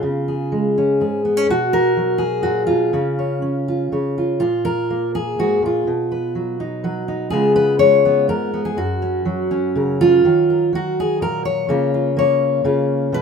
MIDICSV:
0, 0, Header, 1, 2, 480
1, 0, Start_track
1, 0, Tempo, 487013
1, 26, Time_signature, 3, 2, 24, 8
1, 10106, Tempo, 476569
1, 13093, End_track
2, 0, Start_track
2, 0, Title_t, "Steel-string acoustic guitar"
2, 0, Program_c, 0, 25
2, 0, Note_on_c, 0, 65, 61
2, 26, Note_on_c, 0, 49, 63
2, 278, Note_on_c, 0, 68, 40
2, 512, Note_on_c, 0, 56, 47
2, 754, Note_off_c, 0, 65, 0
2, 766, Note_on_c, 0, 61, 41
2, 985, Note_off_c, 0, 68, 0
2, 988, Note_off_c, 0, 49, 0
2, 990, Note_on_c, 0, 44, 49
2, 996, Note_on_c, 0, 68, 43
2, 1227, Note_off_c, 0, 61, 0
2, 1231, Note_on_c, 0, 59, 43
2, 1349, Note_off_c, 0, 59, 0
2, 1349, Note_on_c, 0, 61, 33
2, 1437, Note_off_c, 0, 44, 0
2, 1437, Note_off_c, 0, 56, 0
2, 1466, Note_off_c, 0, 61, 0
2, 1468, Note_off_c, 0, 68, 0
2, 1468, Note_on_c, 0, 47, 62
2, 1483, Note_on_c, 0, 66, 98
2, 1706, Note_on_c, 0, 70, 99
2, 1940, Note_on_c, 0, 54, 49
2, 2151, Note_on_c, 0, 68, 72
2, 2181, Note_off_c, 0, 66, 0
2, 2392, Note_on_c, 0, 66, 73
2, 2409, Note_off_c, 0, 47, 0
2, 2413, Note_on_c, 0, 46, 53
2, 2624, Note_off_c, 0, 66, 0
2, 2628, Note_on_c, 0, 65, 71
2, 2647, Note_off_c, 0, 46, 0
2, 2649, Note_off_c, 0, 70, 0
2, 2651, Note_on_c, 0, 47, 51
2, 2876, Note_off_c, 0, 68, 0
2, 2888, Note_off_c, 0, 54, 0
2, 2888, Note_on_c, 0, 49, 62
2, 2889, Note_off_c, 0, 47, 0
2, 2896, Note_on_c, 0, 61, 44
2, 3141, Note_on_c, 0, 73, 39
2, 3367, Note_off_c, 0, 61, 0
2, 3371, Note_on_c, 0, 61, 48
2, 3602, Note_off_c, 0, 65, 0
2, 3630, Note_on_c, 0, 65, 42
2, 3852, Note_off_c, 0, 49, 0
2, 3857, Note_off_c, 0, 73, 0
2, 3864, Note_on_c, 0, 49, 46
2, 3869, Note_on_c, 0, 73, 38
2, 4107, Note_off_c, 0, 65, 0
2, 4118, Note_on_c, 0, 65, 42
2, 4312, Note_off_c, 0, 61, 0
2, 4319, Note_off_c, 0, 73, 0
2, 4322, Note_off_c, 0, 65, 0
2, 4336, Note_on_c, 0, 65, 80
2, 4341, Note_on_c, 0, 46, 61
2, 4346, Note_off_c, 0, 49, 0
2, 4581, Note_on_c, 0, 70, 92
2, 4833, Note_on_c, 0, 58, 50
2, 5064, Note_off_c, 0, 65, 0
2, 5065, Note_off_c, 0, 70, 0
2, 5075, Note_on_c, 0, 68, 77
2, 5306, Note_off_c, 0, 46, 0
2, 5311, Note_on_c, 0, 44, 55
2, 5318, Note_on_c, 0, 66, 80
2, 5539, Note_off_c, 0, 44, 0
2, 5543, Note_on_c, 0, 46, 57
2, 5550, Note_off_c, 0, 66, 0
2, 5576, Note_on_c, 0, 65, 63
2, 5758, Note_off_c, 0, 58, 0
2, 5782, Note_off_c, 0, 46, 0
2, 5787, Note_off_c, 0, 68, 0
2, 5787, Note_on_c, 0, 47, 62
2, 6027, Note_on_c, 0, 71, 42
2, 6259, Note_on_c, 0, 54, 53
2, 6506, Note_on_c, 0, 63, 50
2, 6508, Note_off_c, 0, 65, 0
2, 6726, Note_off_c, 0, 54, 0
2, 6733, Note_off_c, 0, 71, 0
2, 6738, Note_on_c, 0, 54, 49
2, 6743, Note_on_c, 0, 71, 44
2, 6968, Note_off_c, 0, 63, 0
2, 6980, Note_on_c, 0, 63, 46
2, 7179, Note_off_c, 0, 47, 0
2, 7181, Note_off_c, 0, 54, 0
2, 7183, Note_off_c, 0, 63, 0
2, 7183, Note_off_c, 0, 71, 0
2, 7199, Note_on_c, 0, 68, 89
2, 7214, Note_on_c, 0, 49, 69
2, 7220, Note_on_c, 0, 56, 43
2, 7228, Note_on_c, 0, 59, 49
2, 7237, Note_on_c, 0, 65, 44
2, 7440, Note_off_c, 0, 68, 0
2, 7448, Note_on_c, 0, 71, 86
2, 7675, Note_off_c, 0, 71, 0
2, 7679, Note_on_c, 0, 73, 109
2, 7684, Note_off_c, 0, 56, 0
2, 7688, Note_on_c, 0, 56, 48
2, 7924, Note_off_c, 0, 59, 0
2, 7936, Note_on_c, 0, 59, 43
2, 8160, Note_off_c, 0, 73, 0
2, 8160, Note_on_c, 0, 44, 60
2, 8167, Note_off_c, 0, 49, 0
2, 8170, Note_on_c, 0, 70, 77
2, 8401, Note_off_c, 0, 59, 0
2, 8412, Note_on_c, 0, 59, 44
2, 8522, Note_off_c, 0, 70, 0
2, 8526, Note_on_c, 0, 68, 70
2, 8613, Note_off_c, 0, 44, 0
2, 8616, Note_off_c, 0, 56, 0
2, 8630, Note_off_c, 0, 65, 0
2, 8641, Note_on_c, 0, 42, 67
2, 8645, Note_off_c, 0, 68, 0
2, 8648, Note_off_c, 0, 59, 0
2, 8650, Note_on_c, 0, 66, 74
2, 8891, Note_on_c, 0, 61, 45
2, 9121, Note_on_c, 0, 54, 56
2, 9360, Note_off_c, 0, 61, 0
2, 9372, Note_on_c, 0, 61, 48
2, 9614, Note_on_c, 0, 49, 60
2, 9622, Note_on_c, 0, 70, 39
2, 9859, Note_off_c, 0, 61, 0
2, 9861, Note_off_c, 0, 66, 0
2, 9865, Note_on_c, 0, 65, 101
2, 9870, Note_on_c, 0, 61, 43
2, 10079, Note_off_c, 0, 70, 0
2, 10080, Note_off_c, 0, 61, 0
2, 10096, Note_off_c, 0, 49, 0
2, 10100, Note_on_c, 0, 51, 66
2, 10106, Note_off_c, 0, 42, 0
2, 10353, Note_on_c, 0, 70, 41
2, 10570, Note_off_c, 0, 54, 0
2, 10582, Note_on_c, 0, 54, 55
2, 10592, Note_off_c, 0, 65, 0
2, 10608, Note_on_c, 0, 66, 84
2, 10852, Note_off_c, 0, 70, 0
2, 10856, Note_on_c, 0, 68, 83
2, 11070, Note_on_c, 0, 46, 53
2, 11077, Note_off_c, 0, 68, 0
2, 11081, Note_on_c, 0, 70, 90
2, 11310, Note_off_c, 0, 70, 0
2, 11314, Note_on_c, 0, 73, 105
2, 11325, Note_off_c, 0, 66, 0
2, 11524, Note_off_c, 0, 51, 0
2, 11525, Note_off_c, 0, 46, 0
2, 11549, Note_on_c, 0, 49, 68
2, 11550, Note_off_c, 0, 54, 0
2, 11554, Note_on_c, 0, 58, 48
2, 11562, Note_on_c, 0, 65, 50
2, 11795, Note_off_c, 0, 65, 0
2, 11807, Note_on_c, 0, 65, 42
2, 12020, Note_off_c, 0, 58, 0
2, 12032, Note_on_c, 0, 58, 61
2, 12033, Note_off_c, 0, 73, 0
2, 12052, Note_on_c, 0, 73, 98
2, 12502, Note_off_c, 0, 49, 0
2, 12510, Note_off_c, 0, 65, 0
2, 12514, Note_on_c, 0, 49, 66
2, 12522, Note_on_c, 0, 65, 45
2, 12958, Note_off_c, 0, 58, 0
2, 12964, Note_off_c, 0, 65, 0
2, 12989, Note_off_c, 0, 49, 0
2, 12996, Note_off_c, 0, 73, 0
2, 12997, Note_on_c, 0, 47, 67
2, 13016, Note_on_c, 0, 71, 106
2, 13093, Note_off_c, 0, 47, 0
2, 13093, Note_off_c, 0, 71, 0
2, 13093, End_track
0, 0, End_of_file